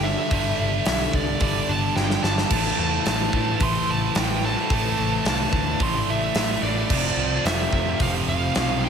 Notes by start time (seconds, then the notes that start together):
Already playing: G1 G2 D3 G3 D4 A4
0.03 D3 G3 E5
0.08 G2
0.30 G1 G2 D3 G3, kick, open hi-hat
0.35 G3
0.59 G1
0.85 B1, snare, open hi-hat
1.13 C2 D5, kick
1.40 G1 G2 D3 G3 D5, kick, open hi-hat
1.69 G1 A5
1.96 G1 G5, snare
2.10 snare
2.15 G5
2.23 G1 G2 D3 G3 A5, snare
2.38 snare
2.49 A1 A2 E3 A3 E4 B4, kick, crash
2.54 A3 C4 E4
2.79 E2 A5
3.05 A1 A5, snare, open hi-hat
3.33 A2 E3 A3 C4 E4, kick
3.60 A1 A2 E3 A3 C6, kick, open hi-hat
3.88 A1 A5
4.15 A1 A2 E3 A3 C4 G5, snare, open hi-hat
4.19 E4
4.42 A2 E3 A3 A5
4.69 A1 A2 E3 A3 D4, kick, open hi-hat
4.73 A3 C4 E4
4.98 A1
5.25 C2 A5, snare, open hi-hat
5.53 D2 A2 E3 A3 C4 E4, kick
5.79 A1 A2 E3 A3 C6, kick, open hi-hat
6.08 A1 E5
6.35 A1 A2 E3 A3 C4, snare, open hi-hat
6.39 E4
6.62 A1 A2 E3 A3 D5
6.89 F1 F2 C3 F3 A3 C4 G4, kick, crash
6.93 F4
7.17 C2
7.45 F1 E5, snare, open hi-hat
7.72 F2 F3 A3 C4 F4 E5, kick
7.99 F1 F2 C3 F3 F5, kick, open hi-hat
8.28 F1 F5
8.55 B1 F3 A3 C4 F4, snare, open hi-hat
8.83 C3 F3 G5